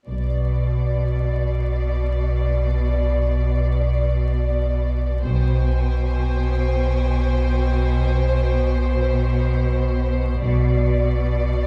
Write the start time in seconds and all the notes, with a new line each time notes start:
0.08 B1 B2 D5
5.24 B1 B2 C5 G5 G#5
10.41 B1 B2 D5